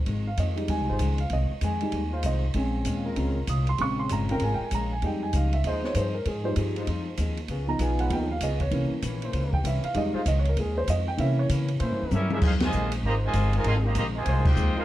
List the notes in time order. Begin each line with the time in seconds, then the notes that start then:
0.06 G#1 F2 D#3 G#3 C4, kick, ride
0.27 F5
0.37 F2 D#3 G#3 C4 D#5, kick, hi-hat pedal, ride
0.56 G3 G#3 D#4, ride
0.68 D#2 F2 D#3 G#3 C4 G#5, kick, ride
0.80 C2
0.87 G#1 G#3 D#4 F4 C5
0.99 C#2 F2 D#3 G#3 C4, kick, hi-hat pedal, ride
1.18 F5, ride
1.30 C2 F2 D#3 G#3 C4 D#5, kick, ride
1.61 F2 D#3 G#3 C4 G#5, kick, hi-hat pedal, ride
1.81 G3 G#3 D#4, ride
1.92 D#2 F2 D#3 G#3 C4, kick, ride
2.11 G#3 D#4 F4 C5 F5
2.23 C2 F2 D#3 G#3 C4 D#5, kick, hi-hat pedal, ride
2.54 A#1 A#2 G#3 C4 C#4 F4 G#5, kick, ride
2.85 D#2 A#2 G#3 C#4 F4, kick, hi-hat pedal, ride
3.04 G#3 F4 A#4
3.16 C#2 A#2 C#3 G#3 C4 C#4 F4, kick, ride
3.47 C2 A#2 G#3 C#4 F4 D#6, kick, hi-hat pedal, ride
3.67 C6, ride
3.78 A#1 A#2 C#3 G#3 C4 C#4 F4 C#6, kick, ride
3.99 C6
4.09 G1 A#2 G#3 C#4 F4 A#5, kick, hi-hat pedal, ride
4.29 C#3 G#3 C4 F4 A#4 G5, ride
4.40 G#1 A#2 G#3 C#4 F4 G#5, kick, ride
4.54 G5
4.60 muted upright bass stroke
4.64 G#5
4.71 A#1 A#2 G#3 C#4 F4 A#5, kick, hi-hat pedal, ride
4.93 G#5
5.02 F2 F3 G3 G#3 C4 D#4 G#4 G5, kick, ride
5.23 G#5
5.33 C#2 F3 C4 D#4 G#4 F5, kick, hi-hat pedal, ride
5.53 E5, ride
5.64 D#2 F3 G#3 C4 D#4 F4 G#4 C5 D#5, kick, ride
5.84 C#5, snare
5.94 G2 F3 C4 D#4 G#4 C5, kick, hi-hat pedal, ride
6.15 A#4
6.25 G#2 F3 C4 D#4 G#4, kick, ride
6.44 F3 G3 D#4 C5
6.56 G2 F3 C4 D#4 G#4, kick, hi-hat pedal, ride
6.74 G#3 D#4 F4 C5, ride
6.87 F2 F3 C4 D#4 G#4, kick, ride
7.17 D#2 F3 C4 D#4 G#4, kick, hi-hat pedal, ride
7.37 ride
7.48 C#2 C#3 B3 F4 G#4, kick, ride
7.68 F3 B3 D#4 A#5
7.79 B1 C#3 B3 F4 G#4 G#5, kick, hi-hat pedal, ride
7.99 G#3 C#4 F4 B4 F#5, ride
8.10 D#2 C#3 F3 B3 D#4 F4 G#4 G5, kick, ride
8.31 F5
8.40 C#2 C#3 B3 F4 G#4 D#5, kick, hi-hat pedal, ride
8.60 C#5, kick, ride
8.71 C2 C3 E3 A#3 C#4, kick, ride
8.91 muted upright bass stroke
9.02 A#1 C3 E3 A#3 C#4, kick, hi-hat pedal, ride
9.21 A#3 C#4 E4 C5, ride
9.32 C#2 C3 E3 A#3 C#4, kick, ride
9.53 G5, kick
9.63 C2 C3 E3 A#3 C#4 E5, kick, hi-hat pedal, ride
9.84 F5, ride
9.94 F2 D#3 G3 G#3 C4 D#4 D#5, kick, ride
10.13 G#3 D#4 F4 C5 F5, muted upright bass stroke
10.25 C#2 F2 D#3 G#3 C4 D#5, kick, hi-hat pedal, ride
10.39 C#5
10.45 ride
10.49 A#4
10.56 D#2 F2 D#3 G#3 C4, kick, ride
10.60 G#4
10.78 C5
10.87 F2 D#3 G#3 C4 D#5, kick, hi-hat pedal, ride
11.08 G5
11.17 C3 E3 A#3 C#4 E5, kick, ride
11.39 C#5
11.49 C3 C#3 E3 A#3 C#4, kick, hi-hat pedal, ride
11.68 ride
11.78 A#2 C3 E3 A#3 C#4 E4 C5, kick, ride
11.91 G2
12.02 E2
12.11 G2 C3 E3 G3 A#3 C#4 E4 G4 A#4 E5, hi-hat pedal, high tom
12.15 C#4
12.30 G3 G#3 A#3 D#4 E4 F4 G#4, high tom
12.34 C#4 G4 A#4 E5
12.42 F2 D#3 G#3 C4 D#4 F4, kick, crash
12.46 G#4 C5 F5
12.60 C3 D#3 G#3, snare, ride
12.65 F4 C5 D#5 G#5
12.72 A#1 F2 D#3 G#3 C4, hi-hat pedal
12.92 ride
13.03 G#1 F2 D#3 G#3 A#3 C4 D#4 F4 G4 C5 D#5 A#5, kick
13.25 C3 D#3 G#3 F4 C5 D#5 G#5
13.33 G1 F2 D#3 G#3 C4, kick, hi-hat pedal, ride
13.53 C3 D#3 G#3 D#4 F4 A#4, ride
13.58 F4 C5 D#5 G#5
13.64 G#1 F2 D#3 G#3 C4 G#4 D#5 F5 C6, kick, ride
13.86 A#3 G4 C5 D#5 A#5
13.95 A#1 F2 D#3 G#3 A#3 C4 C5 D#5 A#5, kick, hi-hat pedal, ride
13.99 G4
14.15 C3 D#3 G#3 F4 C5 D#5 G#5
14.25 C2 F2 D#3 G#3 C4 D#4 F4 C5, kick, ride
14.45 C4 D#4 F4 G4 C5 D#5 G5, kick, crash
14.56 D#2 F2 D#3 G#3 C4, hi-hat pedal
14.76 G#3 C4 D#4 F4 G#4 A#4 C5 F5, muted upright bass stroke